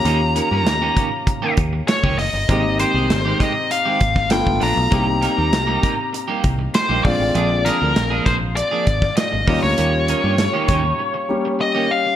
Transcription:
<<
  \new Staff \with { instrumentName = "Lead electric guitar" } { \time 4/4 \key ees \mixolydian \tempo 4 = 99 bes''2~ bes''8 r8 des''8 ees''8~ | ees''8 c''4 ees''8 f''4 g''8 bes''8~ | bes''2~ bes''8 r8 c''8 d''8~ | d''8 bes'4 c''8 d''4 ees''8. des''16~ |
des''2. ees''8 f''8 | }
  \new Staff \with { instrumentName = "Grand piano" } { \time 4/4 \key ees \mixolydian <bes des' f' g'>2.~ <bes des' f' g'>8 r8 | <bes c' ees' g'>2. <a b d' f'>4 | <bes c' ees' g'>2.~ <bes c' ees' g'>8 <d aes c' f'>8~ | <d aes c' f'>2.~ <d aes c' f'>8 <g bes des' f'>8~ |
<g bes des' f'>2~ <g bes des' f'>8 <g bes des' g'>4. | }
  \new Staff \with { instrumentName = "Clean electric guitar" } { \time 4/4 \key ees \mixolydian <ees bes des' g'>16 r16 <ees bes des' bes'>16 <ees bes des' g'>16 r16 <ees bes des' g'>16 <ees bes des' g'>16 r8 <ees bes des' g'>16 r8. <ees bes des' g'>16 r8 | <ees aes c' g'>16 r16 <ees aes c' g'>16 <ees aes c' aes'>16 r16 <ees aes c' g'>16 <ees aes c' g'>16 r8 <ees aes c' g'>16 r4 <f b d' g'>16 r16 | <g bes ees' g'>16 r16 <g bes ees' bes'>16 <g bes ees' g'>16 r16 <g bes ees' g'>16 <g bes ees' g'>16 r8 <g bes ees' g'>16 r8. <g bes ees' g'>16 r8 | <f bes d' aes'>16 r16 <f bes d' aes'>16 <f bes d' bes'>16 r16 <f bes d' aes'>16 <f bes d' aes'>16 r8 <f bes d' aes'>16 r4 <ees bes des' g'>16 r16 |
<ees bes des' g'>16 r16 <ees bes des' bes'>16 <ees bes des' g'>16 r16 <ees bes des' g'>16 <ees bes des' g'>16 r4. <ees bes des' g'>16 r8 | }
  \new Staff \with { instrumentName = "Fingered electric bass" } { \clef bass \time 4/4 \key ees \mixolydian ees,8. g,16 ees,8 r4 ees,8 r16 des,16 ges,,16 g,,16 | aes,,8. c,16 aes,,8 r4 aes,,8 g,,16 g,,16 bes,,16 b,,16 | c,8. ees,16 c,8 r4 c,8 r16 bes,,16 bes,,16 a,,16 | bes,,8. d,16 bes,,8 bes,,8. r16 aes,,8 r16 aes,,16 ees,16 d,16 |
ees,8. g,8 r16 ees,8 r2 | }
  \new DrumStaff \with { instrumentName = "Drums" } \drummode { \time 4/4 hh8 hh8 <hh sn>8 <hh bd>8 <hh bd>8 <hh bd>8 <hh sn>16 bd16 <hho sn>8 | <hh bd>8 hh8 <hh sn>8 <hh bd sn>8 hh8 <hh bd>16 <bd sn>16 <hh sn>16 bd16 hho8 | <hh bd>8 <hh sn>8 <hh sn>8 <hh bd>8 hh8 <hh bd>8 <hh sn>8 <hho bd>8 | hh8 <hh sn>8 <hh sn>8 <hh bd sn>8 hh8 <hh bd>16 <bd sn>16 <hh sn>8 <hho bd sn>8 |
hh8 hh8 <hh sn>8 <hh bd>8 r4 r4 | }
>>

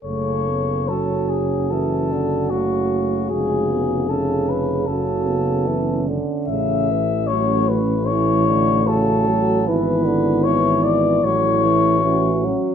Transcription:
<<
  \new Staff \with { instrumentName = "Flugelhorn" } { \time 4/4 \key fis \minor \tempo 4 = 75 cis''4 a'8 gis'8 a'4 fis'4 | gis'4 a'8 b'8 a'4. r8 | e''4 cis''8 b'8 cis''4 a'4 | b'4 cis''8 d''8 cis''4. r8 | }
  \new Staff \with { instrumentName = "French horn section" } { \time 4/4 \key fis \minor a'4 fis'2.~ | fis'4 gis'4 fis'4 cis'4~ | cis'4 cis'4 e'4 fis'4 | e'2 e'4 fis'4 | }
  \new Staff \with { instrumentName = "Euphonium" } { \time 4/4 \key fis \minor a8 b8 cis'4 cis'4 a4 | gis8 b8 cis'4 cis'8 b4 r8 | a4 a2. | b2 a4 cis'4 | }
  \new Staff \with { instrumentName = "Euphonium" } { \clef bass \time 4/4 \key fis \minor cis4 fis4 e8 d8 cis4 | cis4 cis4 cis4 e8 d8 | cis8 e8 fis8 r8 e8 d8 cis8 fis8 | e8 d8 e4 fis8 e8 e8 fis8 | }
  \new Staff \with { instrumentName = "Tuba" } { \clef bass \time 4/4 \key fis \minor fis,,1 | eis,,2 fis,,4. r8 | a,,1 | gis,,2 a,,4. r8 | }
>>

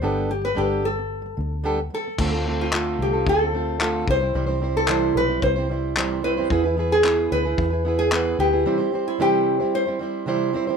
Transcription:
<<
  \new Staff \with { instrumentName = "Nylon-string guitar" } { \time 4/4 \key c \major \tempo 4 = 111 r8 g'16 b'16 g'8 a'4. r8 a'8~ | a'8. f'8. g'8 a'4. c''8~ | c''8. a'8. b'8 c''4. b'8~ | b'8. gis'8. b'4~ b'16 gis'8. g'8~ |
g'8. e'16 g'4 c''4. r8 | }
  \new Staff \with { instrumentName = "Steel-string acoustic guitar" } { \time 4/4 \key c \major <g b d' g' a'>8 <g b>16 <g b>16 <g b d' g' a'>8 <g b>16 <g b>8 <g b>16 <g b>8 <g b d' g' a'>16 <g b>16 <g b>16 <g b>16 | <d a c' f' a'>16 <c' f' a'>16 <a c' f' a'>8 <d a c' f' a'>8. <c' f' a'>8 <c' f' a'>16 <a c' f' a'>8 <d a c' f' a'>8 <g c' e' c''>16 <g c' e' c''>16 | <c e g c' e' c''>16 <g c' e' c''>16 <g c' e' c''>8 <c e g c' e' c''>8. <g c' e' c''>8 <g c' e' c''>16 <g c' e' c''>8 <c e g c' e' c''>8 <g c' e' c''>16 <g c' e' c''>16 | <e b e' gis' b'>16 <e' gis' b'>16 <b e' gis' b'>8 <e b e' gis' b'>8. <e' gis' b'>8 <e' gis' b'>16 <b e' gis' b'>8 <e b e' gis' b'>8 <b e' gis' b'>16 <e' gis' b'>16 |
<c e g c' e' c''>16 <g c' e' c''>16 <g c' e' c''>8 <c e g c' e' c''>8. <g c' e' c''>8 <g c' e' c''>16 <g c' e' c''>8 <c e g c' e' c''>8 <g c' e' c''>16 <g c' e' c''>16 | }
  \new Staff \with { instrumentName = "Fingered electric bass" } { \clef bass \time 4/4 \key c \major g,,4 g,,4. d,4 r8 | d,4. c,8 d,4. c,8 | c,4. b,,8 c,2 | e,4. d,8 e,4. d,8 |
r1 | }
  \new DrumStaff \with { instrumentName = "Drums" } \drummode { \time 4/4 r4 r4 r4 r4 | <cymc bd>4 hc4 bd4 hc8 bd8 | r4 hc4 bd4 hc4 | bd4 hc4 bd4 hc4 |
r4 r4 r4 r4 | }
>>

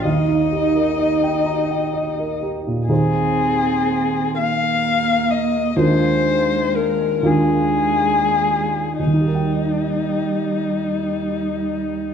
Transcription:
<<
  \new Staff \with { instrumentName = "Violin" } { \time 6/8 \key ees \major \tempo 4. = 41 ees''2~ ees''8 r8 | aes'4. f''4 ees''8 | c''4 bes'8 aes'4. | ees'2. | }
  \new Staff \with { instrumentName = "Grand piano" } { \time 6/8 \key ees \major ees,16 ees'16 g'16 bes'16 ees''16 g''16 bes''16 g''16 ees''16 bes'16 g'16 bes,16 | <ees, ees' aes' c''>2. | <ees, d' f' bes'>4. <ees, d' f' bes'>4. | <ees, ees ees' g' bes' g''>2. | }
  \new Staff \with { instrumentName = "Cello" } { \time 6/8 \key ees \major ees'2~ ees'8 r8 | c'4. bes4. | aes4. aes4~ aes16 r16 | g2. | }
>>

